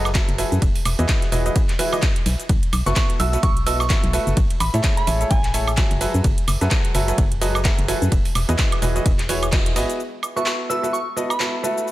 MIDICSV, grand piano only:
0, 0, Header, 1, 2, 480
1, 0, Start_track
1, 0, Tempo, 468750
1, 634, Time_signature, 4, 2, 24, 8
1, 12203, End_track
2, 0, Start_track
2, 0, Title_t, "Grand piano"
2, 0, Program_c, 0, 0
2, 154, Note_on_c, 0, 54, 78
2, 154, Note_on_c, 0, 66, 72
2, 154, Note_on_c, 0, 68, 75
2, 154, Note_on_c, 0, 69, 72
2, 154, Note_on_c, 0, 76, 89
2, 369, Note_off_c, 0, 66, 0
2, 369, Note_off_c, 0, 68, 0
2, 369, Note_off_c, 0, 69, 0
2, 369, Note_off_c, 0, 76, 0
2, 370, Note_off_c, 0, 54, 0
2, 394, Note_on_c, 0, 52, 97
2, 394, Note_on_c, 0, 66, 88
2, 394, Note_on_c, 0, 68, 88
2, 394, Note_on_c, 0, 69, 85
2, 394, Note_on_c, 0, 71, 86
2, 394, Note_on_c, 0, 76, 105
2, 622, Note_off_c, 0, 52, 0
2, 622, Note_off_c, 0, 66, 0
2, 622, Note_off_c, 0, 68, 0
2, 622, Note_off_c, 0, 69, 0
2, 622, Note_off_c, 0, 71, 0
2, 622, Note_off_c, 0, 76, 0
2, 1012, Note_on_c, 0, 52, 87
2, 1012, Note_on_c, 0, 64, 82
2, 1012, Note_on_c, 0, 75, 101
2, 1013, Note_on_c, 0, 66, 81
2, 1013, Note_on_c, 0, 68, 81
2, 1013, Note_on_c, 0, 71, 82
2, 1329, Note_off_c, 0, 52, 0
2, 1329, Note_off_c, 0, 64, 0
2, 1329, Note_off_c, 0, 66, 0
2, 1329, Note_off_c, 0, 75, 0
2, 1330, Note_off_c, 0, 68, 0
2, 1330, Note_off_c, 0, 71, 0
2, 1353, Note_on_c, 0, 64, 85
2, 1353, Note_on_c, 0, 66, 84
2, 1353, Note_on_c, 0, 71, 83
2, 1353, Note_on_c, 0, 75, 103
2, 1354, Note_on_c, 0, 52, 87
2, 1354, Note_on_c, 0, 68, 83
2, 1471, Note_off_c, 0, 52, 0
2, 1471, Note_off_c, 0, 64, 0
2, 1471, Note_off_c, 0, 66, 0
2, 1471, Note_off_c, 0, 68, 0
2, 1471, Note_off_c, 0, 71, 0
2, 1471, Note_off_c, 0, 75, 0
2, 1492, Note_on_c, 0, 52, 86
2, 1492, Note_on_c, 0, 64, 79
2, 1492, Note_on_c, 0, 66, 78
2, 1492, Note_on_c, 0, 68, 81
2, 1492, Note_on_c, 0, 71, 77
2, 1492, Note_on_c, 0, 75, 93
2, 1627, Note_off_c, 0, 52, 0
2, 1627, Note_off_c, 0, 64, 0
2, 1627, Note_off_c, 0, 66, 0
2, 1627, Note_off_c, 0, 68, 0
2, 1627, Note_off_c, 0, 71, 0
2, 1627, Note_off_c, 0, 75, 0
2, 1833, Note_on_c, 0, 52, 96
2, 1833, Note_on_c, 0, 64, 86
2, 1833, Note_on_c, 0, 66, 90
2, 1833, Note_on_c, 0, 68, 88
2, 1833, Note_on_c, 0, 71, 88
2, 1833, Note_on_c, 0, 76, 105
2, 1939, Note_off_c, 0, 52, 0
2, 1939, Note_off_c, 0, 64, 0
2, 1939, Note_off_c, 0, 66, 0
2, 1939, Note_off_c, 0, 68, 0
2, 1939, Note_off_c, 0, 71, 0
2, 1939, Note_off_c, 0, 76, 0
2, 1971, Note_on_c, 0, 64, 86
2, 1971, Note_on_c, 0, 71, 86
2, 1972, Note_on_c, 0, 52, 93
2, 1972, Note_on_c, 0, 66, 83
2, 1972, Note_on_c, 0, 68, 83
2, 1972, Note_on_c, 0, 75, 105
2, 2107, Note_off_c, 0, 52, 0
2, 2107, Note_off_c, 0, 64, 0
2, 2107, Note_off_c, 0, 66, 0
2, 2107, Note_off_c, 0, 68, 0
2, 2107, Note_off_c, 0, 71, 0
2, 2107, Note_off_c, 0, 75, 0
2, 2932, Note_on_c, 0, 59, 87
2, 2932, Note_on_c, 0, 64, 84
2, 2932, Note_on_c, 0, 66, 83
2, 2932, Note_on_c, 0, 69, 84
2, 2932, Note_on_c, 0, 71, 82
2, 2932, Note_on_c, 0, 76, 101
2, 3249, Note_off_c, 0, 59, 0
2, 3249, Note_off_c, 0, 64, 0
2, 3249, Note_off_c, 0, 66, 0
2, 3249, Note_off_c, 0, 69, 0
2, 3249, Note_off_c, 0, 71, 0
2, 3249, Note_off_c, 0, 76, 0
2, 3273, Note_on_c, 0, 59, 90
2, 3273, Note_on_c, 0, 64, 85
2, 3273, Note_on_c, 0, 71, 83
2, 3273, Note_on_c, 0, 76, 103
2, 3274, Note_on_c, 0, 66, 87
2, 3274, Note_on_c, 0, 69, 83
2, 3391, Note_off_c, 0, 59, 0
2, 3391, Note_off_c, 0, 64, 0
2, 3391, Note_off_c, 0, 66, 0
2, 3391, Note_off_c, 0, 69, 0
2, 3391, Note_off_c, 0, 71, 0
2, 3391, Note_off_c, 0, 76, 0
2, 3412, Note_on_c, 0, 59, 85
2, 3412, Note_on_c, 0, 64, 78
2, 3412, Note_on_c, 0, 66, 80
2, 3412, Note_on_c, 0, 69, 83
2, 3412, Note_on_c, 0, 71, 81
2, 3412, Note_on_c, 0, 76, 95
2, 3547, Note_off_c, 0, 59, 0
2, 3547, Note_off_c, 0, 64, 0
2, 3547, Note_off_c, 0, 66, 0
2, 3547, Note_off_c, 0, 69, 0
2, 3547, Note_off_c, 0, 71, 0
2, 3547, Note_off_c, 0, 76, 0
2, 3753, Note_on_c, 0, 59, 97
2, 3753, Note_on_c, 0, 64, 88
2, 3753, Note_on_c, 0, 66, 86
2, 3753, Note_on_c, 0, 69, 89
2, 3753, Note_on_c, 0, 71, 87
2, 3753, Note_on_c, 0, 75, 102
2, 3916, Note_off_c, 0, 64, 0
2, 3916, Note_off_c, 0, 66, 0
2, 3916, Note_off_c, 0, 71, 0
2, 3916, Note_off_c, 0, 75, 0
2, 3917, Note_off_c, 0, 59, 0
2, 3917, Note_off_c, 0, 69, 0
2, 3993, Note_on_c, 0, 59, 78
2, 3993, Note_on_c, 0, 64, 70
2, 3993, Note_on_c, 0, 66, 73
2, 3993, Note_on_c, 0, 69, 70
2, 3993, Note_on_c, 0, 71, 72
2, 3993, Note_on_c, 0, 76, 88
2, 4209, Note_off_c, 0, 59, 0
2, 4209, Note_off_c, 0, 64, 0
2, 4209, Note_off_c, 0, 66, 0
2, 4209, Note_off_c, 0, 69, 0
2, 4209, Note_off_c, 0, 71, 0
2, 4209, Note_off_c, 0, 76, 0
2, 4232, Note_on_c, 0, 66, 87
2, 4232, Note_on_c, 0, 69, 87
2, 4232, Note_on_c, 0, 76, 107
2, 4233, Note_on_c, 0, 57, 100
2, 4233, Note_on_c, 0, 64, 90
2, 4233, Note_on_c, 0, 71, 89
2, 4461, Note_off_c, 0, 57, 0
2, 4461, Note_off_c, 0, 64, 0
2, 4461, Note_off_c, 0, 66, 0
2, 4461, Note_off_c, 0, 69, 0
2, 4461, Note_off_c, 0, 71, 0
2, 4461, Note_off_c, 0, 76, 0
2, 4851, Note_on_c, 0, 68, 88
2, 4852, Note_on_c, 0, 57, 89
2, 4852, Note_on_c, 0, 64, 87
2, 4852, Note_on_c, 0, 69, 86
2, 4852, Note_on_c, 0, 73, 86
2, 4852, Note_on_c, 0, 76, 102
2, 5169, Note_off_c, 0, 57, 0
2, 5169, Note_off_c, 0, 64, 0
2, 5169, Note_off_c, 0, 68, 0
2, 5169, Note_off_c, 0, 69, 0
2, 5169, Note_off_c, 0, 73, 0
2, 5169, Note_off_c, 0, 76, 0
2, 5193, Note_on_c, 0, 57, 93
2, 5193, Note_on_c, 0, 64, 86
2, 5193, Note_on_c, 0, 68, 82
2, 5193, Note_on_c, 0, 69, 84
2, 5193, Note_on_c, 0, 73, 86
2, 5193, Note_on_c, 0, 76, 101
2, 5311, Note_off_c, 0, 57, 0
2, 5311, Note_off_c, 0, 64, 0
2, 5311, Note_off_c, 0, 68, 0
2, 5311, Note_off_c, 0, 69, 0
2, 5311, Note_off_c, 0, 73, 0
2, 5311, Note_off_c, 0, 76, 0
2, 5331, Note_on_c, 0, 57, 88
2, 5331, Note_on_c, 0, 64, 79
2, 5331, Note_on_c, 0, 69, 81
2, 5331, Note_on_c, 0, 73, 81
2, 5331, Note_on_c, 0, 76, 100
2, 5332, Note_on_c, 0, 68, 81
2, 5467, Note_off_c, 0, 57, 0
2, 5467, Note_off_c, 0, 64, 0
2, 5467, Note_off_c, 0, 68, 0
2, 5467, Note_off_c, 0, 69, 0
2, 5467, Note_off_c, 0, 73, 0
2, 5467, Note_off_c, 0, 76, 0
2, 5673, Note_on_c, 0, 57, 93
2, 5673, Note_on_c, 0, 64, 87
2, 5673, Note_on_c, 0, 68, 85
2, 5673, Note_on_c, 0, 69, 90
2, 5673, Note_on_c, 0, 73, 84
2, 5673, Note_on_c, 0, 76, 103
2, 5836, Note_off_c, 0, 57, 0
2, 5836, Note_off_c, 0, 64, 0
2, 5836, Note_off_c, 0, 69, 0
2, 5837, Note_off_c, 0, 68, 0
2, 5837, Note_off_c, 0, 73, 0
2, 5837, Note_off_c, 0, 76, 0
2, 5913, Note_on_c, 0, 54, 79
2, 5913, Note_on_c, 0, 64, 71
2, 5913, Note_on_c, 0, 69, 70
2, 5913, Note_on_c, 0, 73, 70
2, 5914, Note_on_c, 0, 68, 71
2, 5914, Note_on_c, 0, 76, 90
2, 6129, Note_off_c, 0, 54, 0
2, 6129, Note_off_c, 0, 64, 0
2, 6129, Note_off_c, 0, 68, 0
2, 6129, Note_off_c, 0, 69, 0
2, 6129, Note_off_c, 0, 73, 0
2, 6129, Note_off_c, 0, 76, 0
2, 6152, Note_on_c, 0, 54, 97
2, 6152, Note_on_c, 0, 66, 88
2, 6152, Note_on_c, 0, 68, 91
2, 6152, Note_on_c, 0, 69, 85
2, 6152, Note_on_c, 0, 76, 107
2, 6153, Note_on_c, 0, 71, 90
2, 6392, Note_off_c, 0, 54, 0
2, 6392, Note_off_c, 0, 66, 0
2, 6392, Note_off_c, 0, 68, 0
2, 6392, Note_off_c, 0, 69, 0
2, 6392, Note_off_c, 0, 71, 0
2, 6392, Note_off_c, 0, 76, 0
2, 6771, Note_on_c, 0, 54, 89
2, 6771, Note_on_c, 0, 68, 85
2, 6771, Note_on_c, 0, 69, 85
2, 6771, Note_on_c, 0, 76, 101
2, 6772, Note_on_c, 0, 66, 83
2, 6772, Note_on_c, 0, 71, 84
2, 7089, Note_off_c, 0, 54, 0
2, 7089, Note_off_c, 0, 66, 0
2, 7089, Note_off_c, 0, 68, 0
2, 7089, Note_off_c, 0, 69, 0
2, 7089, Note_off_c, 0, 71, 0
2, 7089, Note_off_c, 0, 76, 0
2, 7113, Note_on_c, 0, 54, 92
2, 7113, Note_on_c, 0, 66, 86
2, 7113, Note_on_c, 0, 68, 85
2, 7113, Note_on_c, 0, 69, 84
2, 7113, Note_on_c, 0, 71, 86
2, 7113, Note_on_c, 0, 76, 102
2, 7231, Note_off_c, 0, 54, 0
2, 7231, Note_off_c, 0, 66, 0
2, 7231, Note_off_c, 0, 68, 0
2, 7231, Note_off_c, 0, 69, 0
2, 7231, Note_off_c, 0, 71, 0
2, 7231, Note_off_c, 0, 76, 0
2, 7251, Note_on_c, 0, 54, 88
2, 7251, Note_on_c, 0, 71, 78
2, 7251, Note_on_c, 0, 76, 98
2, 7252, Note_on_c, 0, 66, 79
2, 7252, Note_on_c, 0, 68, 79
2, 7252, Note_on_c, 0, 69, 81
2, 7387, Note_off_c, 0, 54, 0
2, 7387, Note_off_c, 0, 66, 0
2, 7387, Note_off_c, 0, 68, 0
2, 7387, Note_off_c, 0, 69, 0
2, 7387, Note_off_c, 0, 71, 0
2, 7387, Note_off_c, 0, 76, 0
2, 7592, Note_on_c, 0, 54, 99
2, 7592, Note_on_c, 0, 66, 86
2, 7592, Note_on_c, 0, 68, 87
2, 7592, Note_on_c, 0, 69, 86
2, 7592, Note_on_c, 0, 71, 88
2, 7593, Note_on_c, 0, 75, 106
2, 7756, Note_off_c, 0, 54, 0
2, 7756, Note_off_c, 0, 66, 0
2, 7756, Note_off_c, 0, 68, 0
2, 7756, Note_off_c, 0, 69, 0
2, 7756, Note_off_c, 0, 71, 0
2, 7756, Note_off_c, 0, 75, 0
2, 7833, Note_on_c, 0, 54, 81
2, 7833, Note_on_c, 0, 66, 71
2, 7833, Note_on_c, 0, 68, 74
2, 7833, Note_on_c, 0, 69, 73
2, 7833, Note_on_c, 0, 71, 72
2, 7833, Note_on_c, 0, 76, 87
2, 8049, Note_off_c, 0, 54, 0
2, 8049, Note_off_c, 0, 66, 0
2, 8049, Note_off_c, 0, 68, 0
2, 8049, Note_off_c, 0, 69, 0
2, 8049, Note_off_c, 0, 71, 0
2, 8049, Note_off_c, 0, 76, 0
2, 8072, Note_on_c, 0, 66, 90
2, 8073, Note_on_c, 0, 52, 98
2, 8073, Note_on_c, 0, 68, 88
2, 8073, Note_on_c, 0, 69, 90
2, 8073, Note_on_c, 0, 71, 87
2, 8073, Note_on_c, 0, 76, 110
2, 8301, Note_off_c, 0, 52, 0
2, 8301, Note_off_c, 0, 66, 0
2, 8301, Note_off_c, 0, 68, 0
2, 8301, Note_off_c, 0, 69, 0
2, 8301, Note_off_c, 0, 71, 0
2, 8301, Note_off_c, 0, 76, 0
2, 8691, Note_on_c, 0, 52, 92
2, 8691, Note_on_c, 0, 64, 86
2, 8691, Note_on_c, 0, 66, 85
2, 8691, Note_on_c, 0, 71, 89
2, 8691, Note_on_c, 0, 75, 102
2, 8692, Note_on_c, 0, 68, 84
2, 9009, Note_off_c, 0, 52, 0
2, 9009, Note_off_c, 0, 64, 0
2, 9009, Note_off_c, 0, 66, 0
2, 9009, Note_off_c, 0, 68, 0
2, 9009, Note_off_c, 0, 71, 0
2, 9009, Note_off_c, 0, 75, 0
2, 9033, Note_on_c, 0, 52, 95
2, 9033, Note_on_c, 0, 64, 84
2, 9033, Note_on_c, 0, 66, 87
2, 9033, Note_on_c, 0, 71, 84
2, 9033, Note_on_c, 0, 75, 99
2, 9034, Note_on_c, 0, 68, 87
2, 9151, Note_off_c, 0, 52, 0
2, 9151, Note_off_c, 0, 64, 0
2, 9151, Note_off_c, 0, 66, 0
2, 9151, Note_off_c, 0, 68, 0
2, 9151, Note_off_c, 0, 71, 0
2, 9151, Note_off_c, 0, 75, 0
2, 9172, Note_on_c, 0, 52, 86
2, 9172, Note_on_c, 0, 64, 82
2, 9172, Note_on_c, 0, 66, 84
2, 9172, Note_on_c, 0, 68, 80
2, 9172, Note_on_c, 0, 71, 78
2, 9172, Note_on_c, 0, 75, 102
2, 9307, Note_off_c, 0, 52, 0
2, 9307, Note_off_c, 0, 64, 0
2, 9307, Note_off_c, 0, 66, 0
2, 9307, Note_off_c, 0, 68, 0
2, 9307, Note_off_c, 0, 71, 0
2, 9307, Note_off_c, 0, 75, 0
2, 9513, Note_on_c, 0, 73, 110
2, 9514, Note_on_c, 0, 52, 97
2, 9514, Note_on_c, 0, 64, 90
2, 9514, Note_on_c, 0, 66, 90
2, 9514, Note_on_c, 0, 68, 89
2, 9514, Note_on_c, 0, 71, 87
2, 9677, Note_off_c, 0, 52, 0
2, 9677, Note_off_c, 0, 64, 0
2, 9677, Note_off_c, 0, 66, 0
2, 9677, Note_off_c, 0, 68, 0
2, 9677, Note_off_c, 0, 71, 0
2, 9677, Note_off_c, 0, 73, 0
2, 9753, Note_on_c, 0, 52, 79
2, 9753, Note_on_c, 0, 64, 75
2, 9753, Note_on_c, 0, 66, 76
2, 9753, Note_on_c, 0, 68, 73
2, 9753, Note_on_c, 0, 71, 73
2, 9753, Note_on_c, 0, 75, 91
2, 9969, Note_off_c, 0, 52, 0
2, 9969, Note_off_c, 0, 64, 0
2, 9969, Note_off_c, 0, 66, 0
2, 9969, Note_off_c, 0, 68, 0
2, 9969, Note_off_c, 0, 71, 0
2, 9969, Note_off_c, 0, 75, 0
2, 9993, Note_on_c, 0, 64, 88
2, 9993, Note_on_c, 0, 71, 88
2, 9993, Note_on_c, 0, 75, 110
2, 9994, Note_on_c, 0, 59, 96
2, 9994, Note_on_c, 0, 66, 91
2, 9994, Note_on_c, 0, 68, 87
2, 10221, Note_off_c, 0, 59, 0
2, 10221, Note_off_c, 0, 64, 0
2, 10221, Note_off_c, 0, 68, 0
2, 10221, Note_off_c, 0, 71, 0
2, 10221, Note_off_c, 0, 75, 0
2, 10222, Note_off_c, 0, 66, 0
2, 10612, Note_on_c, 0, 71, 79
2, 10612, Note_on_c, 0, 76, 95
2, 10613, Note_on_c, 0, 59, 84
2, 10613, Note_on_c, 0, 64, 77
2, 10613, Note_on_c, 0, 66, 80
2, 10613, Note_on_c, 0, 69, 80
2, 10929, Note_off_c, 0, 59, 0
2, 10929, Note_off_c, 0, 64, 0
2, 10929, Note_off_c, 0, 66, 0
2, 10929, Note_off_c, 0, 69, 0
2, 10929, Note_off_c, 0, 71, 0
2, 10929, Note_off_c, 0, 76, 0
2, 10954, Note_on_c, 0, 59, 83
2, 10954, Note_on_c, 0, 64, 77
2, 10954, Note_on_c, 0, 66, 80
2, 10954, Note_on_c, 0, 69, 76
2, 10954, Note_on_c, 0, 71, 75
2, 10955, Note_on_c, 0, 76, 93
2, 11072, Note_off_c, 0, 59, 0
2, 11072, Note_off_c, 0, 64, 0
2, 11072, Note_off_c, 0, 66, 0
2, 11072, Note_off_c, 0, 69, 0
2, 11072, Note_off_c, 0, 71, 0
2, 11072, Note_off_c, 0, 76, 0
2, 11093, Note_on_c, 0, 59, 80
2, 11093, Note_on_c, 0, 64, 75
2, 11093, Note_on_c, 0, 66, 72
2, 11093, Note_on_c, 0, 69, 73
2, 11093, Note_on_c, 0, 71, 73
2, 11093, Note_on_c, 0, 76, 90
2, 11227, Note_off_c, 0, 59, 0
2, 11227, Note_off_c, 0, 64, 0
2, 11227, Note_off_c, 0, 69, 0
2, 11227, Note_off_c, 0, 71, 0
2, 11227, Note_off_c, 0, 76, 0
2, 11228, Note_off_c, 0, 66, 0
2, 11433, Note_on_c, 0, 64, 80
2, 11433, Note_on_c, 0, 66, 81
2, 11433, Note_on_c, 0, 69, 79
2, 11433, Note_on_c, 0, 71, 78
2, 11433, Note_on_c, 0, 75, 97
2, 11434, Note_on_c, 0, 59, 88
2, 11597, Note_off_c, 0, 59, 0
2, 11597, Note_off_c, 0, 64, 0
2, 11597, Note_off_c, 0, 66, 0
2, 11597, Note_off_c, 0, 69, 0
2, 11597, Note_off_c, 0, 71, 0
2, 11597, Note_off_c, 0, 75, 0
2, 11673, Note_on_c, 0, 66, 65
2, 11674, Note_on_c, 0, 59, 72
2, 11674, Note_on_c, 0, 64, 65
2, 11674, Note_on_c, 0, 69, 66
2, 11674, Note_on_c, 0, 71, 70
2, 11674, Note_on_c, 0, 76, 82
2, 11889, Note_off_c, 0, 59, 0
2, 11889, Note_off_c, 0, 64, 0
2, 11889, Note_off_c, 0, 66, 0
2, 11889, Note_off_c, 0, 69, 0
2, 11889, Note_off_c, 0, 71, 0
2, 11889, Note_off_c, 0, 76, 0
2, 11913, Note_on_c, 0, 64, 83
2, 11913, Note_on_c, 0, 69, 81
2, 11913, Note_on_c, 0, 71, 82
2, 11913, Note_on_c, 0, 76, 97
2, 11914, Note_on_c, 0, 57, 86
2, 11914, Note_on_c, 0, 66, 82
2, 12141, Note_off_c, 0, 57, 0
2, 12141, Note_off_c, 0, 64, 0
2, 12141, Note_off_c, 0, 66, 0
2, 12141, Note_off_c, 0, 69, 0
2, 12141, Note_off_c, 0, 71, 0
2, 12141, Note_off_c, 0, 76, 0
2, 12203, End_track
0, 0, End_of_file